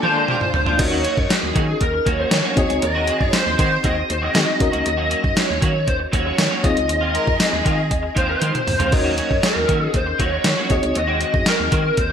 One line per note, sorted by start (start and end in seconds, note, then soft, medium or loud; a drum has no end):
0.00 0.16 F3 medium
0.00 0.15 G#3 medium
0.00 0.76 A#3 medium
0.00 0.77 D4 medium
0.00 0.15 D4 medium
0.00 0.77 F4 medium
0.00 0.28 A4 loud
0.00 0.15 C5 medium
0.00 0.25 D5 medium
0.00 0.78 D5 medium
0.00 0.78 G#5 medium
0.00 high tom medium
0.04 0.14 F4 medium
0.15 0.27 F3 medium
0.15 0.27 G#3 medium
0.15 0.28 D4 medium
0.15 0.28 F4 medium
0.15 0.81 C5 loud
0.28 0.45 F3 medium
0.28 0.40 G#3 medium
0.28 0.40 D4 medium
0.28 0.39 F4 medium
0.28 0.40 G4 loud
0.28 mid tom medium
0.40 0.76 F4 medium
0.40 muted clean electric guitar stroke soft
0.40 mid tom medium
0.54 muted clean electric guitar stroke soft
0.54 floor tom loud
0.66 0.79 F3 medium
0.66 0.79 G#3 medium
0.66 0.80 D4 medium
0.66 0.79 F4 medium
0.66 floor tom loud
0.77 1.08 D#2 loud
0.77 2.53 C#4 medium
0.77 2.53 D#4 medium
0.77 2.53 F#4 medium
0.77 2.53 A#4 medium
0.77 1.27 C#5 loud
0.77 2.54 D#5 medium
0.77 muted clean electric guitar stroke soft
0.77 kick loud
0.77 closed hi-hat loud
0.77 crash loud
0.91 1.03 F#3 medium
0.91 1.03 A#3 medium
0.91 1.04 C#4 medium
0.91 1.05 F#4 medium
1.04 1.17 F#3 medium
1.04 1.17 A#3 medium
1.04 1.17 C#4 medium
1.04 1.16 F#4 medium
1.04 closed hi-hat medium
1.17 1.27 F#2 medium
1.17 muted clean electric guitar stroke soft
1.17 kick medium
1.30 1.82 G#4 loud
1.30 snare loud
1.30 closed hi-hat medium
1.30 tambourine medium
1.43 1.52 D#2 loud
1.43 muted clean electric guitar stroke medium
1.55 1.75 D#3 loud
1.55 1.72 F#3 medium
1.55 1.68 A#3 medium
1.55 1.67 C#4 loud
1.55 1.67 F#4 loud
1.55 kick loud
1.55 closed hi-hat medium
1.68 muted clean electric guitar stroke soft
1.81 2.00 D#2 loud
1.81 2.05 A#4 loud
1.81 muted clean electric guitar stroke medium
1.81 kick medium
1.81 closed hi-hat medium
1.93 muted clean electric guitar stroke soft
2.06 2.25 D#2 loud
2.06 2.19 F#3 medium
2.06 2.19 A#3 medium
2.06 2.18 C#4 loud
2.06 2.18 F#4 loud
2.06 2.19 C#5 loud
2.06 kick medium
2.06 closed hi-hat medium
2.19 2.30 F#3 medium
2.19 2.31 A#3 medium
2.19 2.31 C#4 medium
2.19 2.32 F#4 medium
2.19 2.83 C#5 loud
2.31 2.42 D#3 loud
2.31 2.55 F#4 medium
2.31 muted clean electric guitar stroke soft
2.31 snare loud
2.31 closed hi-hat loud
2.31 tambourine medium
2.44 2.57 F#3 medium
2.44 2.57 A#3 medium
2.44 2.58 C#4 medium
2.44 2.57 F#4 medium
2.56 2.67 D#2 loud
2.56 4.31 C4 medium
2.56 4.31 D#4 medium
2.56 4.31 F#4 medium
2.56 2.82 G#4 medium
2.56 4.32 G#4 medium
2.56 4.32 D#5 medium
2.56 muted clean electric guitar stroke soft
2.56 kick loud
2.56 closed hi-hat medium
2.70 2.80 C#2 medium
2.70 muted clean electric guitar stroke medium
2.70 closed hi-hat medium
2.81 3.11 D#2 loud
2.81 3.06 A#4 loud
2.81 3.34 D#5 loud
2.81 muted clean electric guitar stroke soft
2.81 closed hi-hat loud
2.95 3.07 D#3 medium
2.95 3.07 G#3 medium
2.95 3.08 C4 medium
2.95 3.08 F#4 loud
3.06 3.21 D#3 medium
3.06 3.21 G#3 medium
3.06 3.21 C4 medium
3.06 3.20 F#4 medium
3.06 3.33 G#4 loud
3.06 closed hi-hat medium
3.21 3.30 F#2 medium
3.21 muted clean electric guitar stroke soft
3.21 kick loud
3.32 3.57 C5 loud
3.32 3.81 C5 loud
3.32 snare loud
3.32 closed hi-hat medium
3.32 tambourine medium
3.46 3.56 D#2 loud
3.46 muted clean electric guitar stroke soft
3.58 3.75 D#3 medium
3.58 3.78 D#3 loud
3.58 3.71 G#3 medium
3.58 3.71 C4 medium
3.58 3.70 F#4 medium
3.58 3.94 C5 loud
3.58 kick loud
3.58 closed hi-hat medium
3.71 muted clean electric guitar stroke soft
3.84 4.03 D#2 loud
3.84 4.00 D#3 medium
3.84 3.96 G#3 medium
3.84 3.96 C4 medium
3.84 3.95 F#4 medium
3.84 4.11 D#5 loud
3.84 kick medium
3.84 closed hi-hat medium
3.96 muted clean electric guitar stroke medium
4.09 4.29 D#2 loud
4.09 4.24 C5 loud
4.09 muted clean electric guitar stroke soft
4.09 closed hi-hat medium
4.22 4.33 D#3 medium
4.22 4.33 G#3 medium
4.22 4.34 C4 medium
4.22 4.35 F#4 medium
4.22 4.83 D#5 loud
4.34 4.51 D#3 medium
4.34 4.45 D#3 loud
4.34 4.47 G#3 medium
4.34 4.47 C4 loud
4.34 4.61 C4 medium
4.34 4.59 D#4 medium
4.34 4.46 F#4 loud
4.34 4.60 F#4 medium
4.34 4.61 G#4 medium
4.34 4.61 D#5 medium
4.34 snare loud
4.34 closed hi-hat loud
4.34 tambourine medium
4.47 muted clean electric guitar stroke medium
4.60 4.70 D#2 loud
4.60 6.59 C#4 medium
4.60 6.60 D#4 medium
4.60 6.60 F#4 medium
4.60 6.60 A#4 medium
4.60 6.61 D#5 medium
4.60 muted clean electric guitar stroke soft
4.60 kick loud
4.60 closed hi-hat medium
4.72 4.83 C#2 medium
4.72 4.84 F#3 medium
4.72 4.84 A#3 medium
4.72 4.85 C#4 medium
4.72 4.85 F#4 medium
4.72 closed hi-hat medium
4.85 5.15 D#2 loud
4.85 5.37 D#5 loud
4.85 muted clean electric guitar stroke soft
4.85 closed hi-hat loud
4.97 5.09 F#3 medium
4.97 5.09 A#3 medium
4.97 5.10 C#4 medium
4.97 5.10 F#4 medium
5.10 5.24 F#3 medium
5.10 5.23 A#3 medium
5.10 5.22 C#4 medium
5.10 5.22 F#4 medium
5.10 closed hi-hat medium
5.23 5.34 F#2 medium
5.23 muted clean electric guitar stroke medium
5.23 kick medium
5.37 5.88 C#5 loud
5.37 snare loud
5.37 closed hi-hat medium
5.37 tambourine medium
5.48 5.59 D#2 loud
5.48 muted clean electric guitar stroke medium
5.61 5.89 D#3 loud
5.61 5.78 F#3 medium
5.61 5.74 A#3 medium
5.61 5.73 C#4 medium
5.61 5.72 F#4 loud
5.61 kick loud
5.61 closed hi-hat medium
5.74 muted clean electric guitar stroke soft
5.87 6.07 D#2 loud
5.87 5.95 C5 loud
5.87 muted clean electric guitar stroke soft
5.87 kick medium
5.87 closed hi-hat medium
6.00 muted clean electric guitar stroke soft
6.12 6.32 D#2 loud
6.12 6.25 F#3 medium
6.12 6.25 A#3 medium
6.12 6.24 C#4 medium
6.12 6.24 F#4 loud
6.12 6.25 C#5 loud
6.12 kick medium
6.12 closed hi-hat medium
6.25 6.36 F#3 medium
6.25 6.37 A#3 medium
6.25 6.37 C#4 medium
6.25 6.38 F#4 medium
6.25 6.64 C#5 loud
6.38 6.48 D#3 medium
6.38 muted clean electric guitar stroke soft
6.38 snare loud
6.38 closed hi-hat loud
6.38 tambourine medium
6.50 6.62 F#3 medium
6.50 6.63 A#3 medium
6.50 6.63 C#4 medium
6.50 6.64 F#4 medium
6.63 6.74 D#2 loud
6.63 8.63 C4 medium
6.63 8.63 D#4 medium
6.63 8.63 F4 medium
6.63 8.64 G#4 medium
6.63 8.17 D#5 loud
6.63 8.64 D#5 medium
6.63 muted clean electric guitar stroke soft
6.63 kick loud
6.63 closed hi-hat medium
6.75 6.91 C#2 medium
6.75 muted clean electric guitar stroke soft
6.75 closed hi-hat medium
6.88 7.18 D#2 loud
6.88 muted clean electric guitar stroke soft
6.88 closed hi-hat loud
7.01 7.12 D#3 medium
7.01 7.13 G#3 medium
7.01 7.14 C4 medium
7.01 7.14 F4 medium
7.14 7.27 D#3 medium
7.14 7.26 G#3 medium
7.14 7.26 C4 medium
7.14 7.25 F4 medium
7.14 7.38 A#4 loud
7.14 closed hi-hat medium
7.27 7.37 F2 medium
7.27 muted clean electric guitar stroke medium
7.27 kick loud
7.39 8.03 G#4 loud
7.39 snare loud
7.39 closed hi-hat medium
7.39 tambourine medium
7.52 7.62 D#2 loud
7.52 muted clean electric guitar stroke soft
7.64 7.82 D#3 medium
7.64 7.93 D#3 loud
7.64 7.77 G#3 medium
7.64 7.76 C4 loud
7.64 7.76 F4 loud
7.64 kick loud
7.64 closed hi-hat medium
7.77 muted clean electric guitar stroke soft
7.90 8.10 D#2 loud
7.90 muted clean electric guitar stroke medium
7.90 kick medium
7.90 closed hi-hat medium
8.03 muted clean electric guitar stroke soft
8.15 8.35 D#2 medium
8.15 8.29 D#3 medium
8.15 8.28 G#3 medium
8.15 8.28 C4 loud
8.15 8.27 F4 loud
8.15 8.29 C5 loud
8.15 kick medium
8.15 closed hi-hat medium
8.28 8.40 D#3 medium
8.28 8.41 G#3 medium
8.28 8.41 C4 medium
8.28 8.42 F4 medium
8.28 8.89 C5 loud
8.41 8.58 D#3 medium
8.41 8.51 D#3 loud
8.41 8.54 G#3 medium
8.41 8.53 C4 medium
8.41 8.52 F4 medium
8.41 closed hi-hat loud
8.41 high tom medium
8.54 muted clean electric guitar stroke soft
8.54 closed hi-hat medium
8.54 mid tom medium
8.67 8.77 D#2 loud
8.67 muted clean electric guitar stroke soft
8.67 mid tom loud
8.67 open hi-hat medium
8.79 8.94 C#2 medium
8.79 8.91 D#3 medium
8.79 8.92 G#3 medium
8.79 8.92 C4 medium
8.79 8.92 F4 medium
8.79 closed hi-hat medium
8.79 floor tom loud
8.91 9.21 D#2 loud
8.91 10.66 C#4 medium
8.91 10.67 D#4 medium
8.91 10.67 F#4 medium
8.91 10.67 A#4 medium
8.91 9.40 C#5 loud
8.91 10.68 D#5 medium
8.91 muted clean electric guitar stroke medium
8.91 kick loud
8.91 crash medium
9.04 9.16 F#3 medium
9.04 9.16 A#3 medium
9.04 9.17 C#4 medium
9.04 9.18 F#4 medium
9.17 9.30 F#3 medium
9.17 9.30 A#3 medium
9.17 9.30 C#4 medium
9.17 9.29 F#4 medium
9.17 closed hi-hat medium
9.30 9.40 F#2 loud
9.30 muted clean electric guitar stroke medium
9.30 kick medium
9.43 9.96 A#4 loud
9.43 snare loud
9.43 closed hi-hat medium
9.43 tambourine medium
9.55 9.66 D#2 loud
9.55 muted clean electric guitar stroke medium
9.68 9.88 D#3 loud
9.68 9.85 F#3 medium
9.68 9.81 A#3 medium
9.68 9.80 C#4 loud
9.68 9.79 F#4 loud
9.68 kick loud
9.68 closed hi-hat medium
9.81 muted clean electric guitar stroke medium
9.94 10.13 D#2 loud
9.94 10.21 C5 loud
9.94 muted clean electric guitar stroke soft
9.94 kick loud
9.94 closed hi-hat medium
10.06 muted clean electric guitar stroke medium
10.19 10.39 D#2 loud
10.19 10.32 F#3 medium
10.19 10.31 A#3 loud
10.19 10.31 C#4 loud
10.19 10.30 F#4 loud
10.19 10.33 C#5 loud
10.19 kick medium
10.19 closed hi-hat medium
10.31 10.43 F#3 medium
10.31 10.44 A#3 medium
10.31 10.44 C#4 medium
10.31 10.44 F#4 medium
10.31 10.98 C#5 loud
10.44 10.55 D#3 loud
10.44 muted clean electric guitar stroke soft
10.44 snare loud
10.44 closed hi-hat loud
10.44 tambourine medium
10.57 10.70 F#3 medium
10.57 10.70 A#3 medium
10.57 10.70 C#4 medium
10.57 10.70 F#4 medium
10.69 10.80 D#2 loud
10.69 12.12 C4 medium
10.69 12.12 D#4 medium
10.69 12.12 F#4 medium
10.69 12.12 G#4 medium
10.69 12.12 D#5 medium
10.69 muted clean electric guitar stroke soft
10.69 kick loud
10.69 closed hi-hat medium
10.83 10.93 C#2 medium
10.83 muted clean electric guitar stroke soft
10.83 closed hi-hat medium
10.95 11.25 D#2 loud
10.95 11.44 D#5 loud
10.95 muted clean electric guitar stroke soft
10.95 closed hi-hat loud
11.08 11.20 D#3 medium
11.08 11.20 G#3 medium
11.08 11.21 C4 medium
11.08 11.21 F#4 medium
11.21 11.34 D#3 medium
11.21 11.34 G#3 medium
11.21 11.33 C4 medium
11.21 11.32 F#4 medium
11.21 closed hi-hat medium
11.34 11.44 F#2 medium
11.34 muted clean electric guitar stroke soft
11.34 kick loud
11.46 11.95 A#4 loud
11.46 snare loud
11.46 closed hi-hat medium
11.46 tambourine medium
11.59 11.69 D#2 loud
11.59 muted clean electric guitar stroke medium
11.71 11.88 D#3 medium
11.71 11.91 D#3 loud
11.71 11.84 G#3 medium
11.71 11.84 C4 medium
11.71 11.83 F#4 loud
11.71 kick loud
11.71 closed hi-hat medium
11.84 muted clean electric guitar stroke medium
11.97 12.12 D#2 loud
11.97 12.12 C5 loud
11.97 muted clean electric guitar stroke soft
11.97 kick medium
11.97 closed hi-hat medium